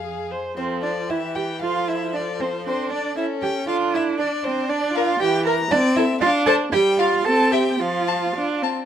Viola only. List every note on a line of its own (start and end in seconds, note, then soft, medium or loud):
0.03 0.32 G#4 soft
0.31 0.57 C5 soft
0.58 1.12 F3 soft
1.10 1.64 E3 medium
1.62 2.67 F3 medium
2.66 3.16 D4 medium
3.17 3.69 C#4 medium
3.68 4.69 D4 medium
4.69 5.12 D4 medium
5.20 5.62 E3 medium
5.71 6.13 C4 medium
6.22 6.64 D4 medium
6.73 7.16 G3 medium
7.25 7.71 C4 medium
7.80 8.26 F3 medium
8.35 8.64 D4 medium
8.62 8.85 C4 medium